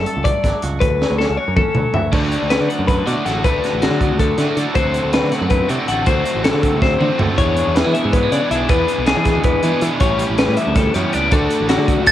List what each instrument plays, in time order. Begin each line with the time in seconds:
Already playing: clean electric guitar G2 F#3 A3 A4
0.06 clean electric guitar A4, closed hi-hat
0.17 picked electric bass C#2
0.24 clean electric guitar A3 D5, kick, closed hi-hat
0.44 picked electric bass G1, clean electric guitar F#3, kick, snare, closed hi-hat
0.62 picked electric bass C#2, clean electric guitar F#4, closed hi-hat
0.80 clean electric guitar D2 B4, picked electric bass D2, kick, closed hi-hat
1.01 clean electric guitar F#3, snare
1.10 picked electric bass D2
1.18 clean electric guitar C#4 A4, snare
1.30 picked electric bass C#2
1.37 clean electric guitar F#4 C#5
1.48 picked electric bass F#2
1.57 clean electric guitar C#4 A4, kick, mid tom
1.75 picked electric bass D2, clean electric guitar F#3, mid tom
1.94 picked electric bass D2, clean electric guitar F#4 E5, floor tom
2.12 clean electric guitar D2 D5, picked electric bass D2, overdriven electric guitar D3 A3 D4 F#4, kick, crash
2.32 closed hi-hat
2.43 picked electric bass D2
2.50 clean electric guitar D3 F#3 B4, snare, closed hi-hat
2.61 picked electric bass D3
2.69 clean electric guitar B3 F#5, closed hi-hat
2.79 picked electric bass F#2
2.88 clean electric guitar F#3 B4, kick, closed hi-hat
3.06 clean electric guitar A2 B3 D5, picked electric bass B2, overdriven electric guitar D3 A3 D4 F#4, closed hi-hat
3.25 picked electric bass A1, overdriven electric guitar D3 A3 D4 F#4, clean electric guitar A4 F#5, snare, closed hi-hat
3.44 picked electric bass D2, overdriven electric guitar D3 A3 D4 F#4, clean electric guitar B4, kick, closed hi-hat
3.64 snare, closed hi-hat
3.73 picked electric bass A1
3.82 clean electric guitar D3 F#3 F#4, snare, closed hi-hat
3.91 picked electric bass D3
4.01 clean electric guitar B3, kick, closed hi-hat
4.10 picked electric bass D2
4.20 clean electric guitar F#3 A4, kick, closed hi-hat
4.38 clean electric guitar A2 A3, overdriven electric guitar D3 A3 D4 F#4, picked electric bass D3, snare, closed hi-hat
4.49 clean electric guitar B3
4.57 picked electric bass D3, overdriven electric guitar D3 A3 D4 F#4, clean electric guitar A4, closed hi-hat
4.75 picked electric bass D2, clean electric guitar D2 D3 F#3 C4 F#4 C5, overdriven electric guitar D3 A3 C4 F#4, kick, closed hi-hat
4.94 closed hi-hat
5.04 picked electric bass D2
5.13 clean electric guitar D3 F#3 B4, snare, closed hi-hat
5.24 picked electric bass D3
5.32 clean electric guitar A3 F#5, snare, closed hi-hat
5.41 picked electric bass F#2, clean electric guitar C4
5.50 clean electric guitar F#3 B4, kick, closed hi-hat
5.68 clean electric guitar A2 A3 D5, picked electric bass C3, overdriven electric guitar D3 A3 C4 F#4, closed hi-hat
5.80 clean electric guitar C4
5.88 picked electric bass A1, overdriven electric guitar D3 A3 C4 F#4, clean electric guitar A4 F#5, closed hi-hat
6.06 picked electric bass D2, clean electric guitar D2 C5, overdriven electric guitar D3 A3 C4 F#4, kick, closed hi-hat
6.25 closed hi-hat
6.35 picked electric bass A1
6.44 clean electric guitar D3 F#3 A4, snare, closed hi-hat
6.54 picked electric bass D3
6.63 clean electric guitar C4, kick, closed hi-hat
6.73 picked electric bass D2
6.82 clean electric guitar F#3 C5, kick, snare
7.00 clean electric guitar A2 C4, overdriven electric guitar D3 A3 C4 F#4, picked electric bass D3, mid tom
7.18 picked electric bass D2, overdriven electric guitar D3 A3 C4 F#4, clean electric guitar A4, floor tom
7.37 clean electric guitar E2 C#5, picked electric bass E2, overdriven electric guitar E3 B3 D4 G#4, kick, closed hi-hat
7.57 closed hi-hat
7.67 picked electric bass E2
7.75 clean electric guitar E3 F#3 B4, snare, closed hi-hat
7.84 picked electric bass E3, clean electric guitar G#3
7.94 clean electric guitar A3 E5, closed hi-hat
8.04 picked electric bass G#2, clean electric guitar B3
8.13 clean electric guitar F#3 B4, kick, closed hi-hat
8.23 clean electric guitar G#3
8.31 clean electric guitar B2 B3 D5, picked electric bass C#3, overdriven electric guitar E3 B3 D4 G#4, closed hi-hat
8.50 picked electric bass B1, overdriven electric guitar E3 B3 D4 G#4, clean electric guitar D4 E5, closed hi-hat
8.69 picked electric bass E2, clean electric guitar E2 B4, overdriven electric guitar E3 B3 D4 G#4, kick, closed hi-hat
8.88 closed hi-hat
8.98 picked electric bass B1
9.06 clean electric guitar E3 G#3 G#4, snare, closed hi-hat
9.17 picked electric bass E3
9.25 clean electric guitar A3, kick, snare, closed hi-hat
9.35 picked electric bass E2, clean electric guitar B3
9.44 clean electric guitar G#3 B4, kick, closed hi-hat
9.63 clean electric guitar B2 A3, overdriven electric guitar E3 B3 D4 G#4, picked electric bass E3, closed hi-hat
9.72 clean electric guitar B3
9.81 picked electric bass E3, overdriven electric guitar E3 B3 D4 G#4, closed hi-hat
10.00 picked electric bass A1, overdriven electric guitar A2 E3 G3 C#4 G4, clean electric guitar A2 C#5, kick, closed hi-hat
10.19 closed hi-hat
10.30 picked electric bass A1
10.38 clean electric guitar D3 G3 B4, snare, closed hi-hat
10.48 picked electric bass A2
10.57 clean electric guitar B3 E5, closed hi-hat
10.67 picked electric bass D2
10.76 clean electric guitar G3 A4, kick, snare, closed hi-hat
10.94 clean electric guitar E2 B3 C#5, picked electric bass F#2, overdriven electric guitar A2 E3 G3 C#4 G4, closed hi-hat
11.13 picked electric bass C#2, overdriven electric guitar A2 E3 G3 C#4 G4, clean electric guitar D4 D5, closed hi-hat
11.31 clean electric guitar D2 A4, picked electric bass D2, overdriven electric guitar D3 A3 D4 F#4, kick, closed hi-hat
11.50 closed hi-hat
11.61 picked electric bass A1
11.69 clean electric guitar D3 F#3 F#4, snare, closed hi-hat
11.78 picked electric bass D3
11.88 kick, closed hi-hat
11.97 picked electric bass D2
12.06 clean electric guitar F#3 A4, glockenspiel A6, kick, closed hi-hat